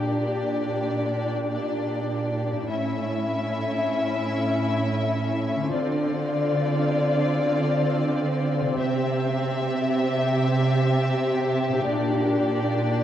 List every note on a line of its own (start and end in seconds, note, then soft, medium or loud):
0.00 2.63 A#2 soft
0.00 2.65 A#2 soft
0.00 2.66 D4 soft
0.00 2.66 G4 soft
0.00 2.68 G4 soft
0.00 2.65 D5 soft
0.00 2.70 D5 soft
2.52 5.67 A2 soft
2.56 5.69 C#4 soft
2.60 5.72 E4 soft
2.65 5.74 E5 soft
2.69 5.69 A2 soft
2.69 5.69 C#4 soft
2.69 5.69 E4 soft
2.69 5.69 E5 soft
5.55 8.73 D3 soft
5.60 8.64 C4 soft
5.64 8.78 F4 soft
5.69 8.80 D5 soft
5.73 8.75 D3 medium
5.73 11.83 C4 medium
5.73 8.75 F4 soft
5.73 8.75 D5 soft
8.61 11.81 C3 soft
8.65 11.83 C4 soft
8.70 11.77 G4 soft
8.74 11.82 C3 medium
8.74 13.04 G4 medium
8.74 11.88 E5 soft
8.80 11.83 E5 soft
11.69 13.04 A#2 soft
11.73 13.04 D4 soft
11.78 13.04 G4 soft
11.82 13.04 A#2 medium
11.82 13.04 D5 soft
11.87 13.04 D4 medium
11.87 13.04 D5 soft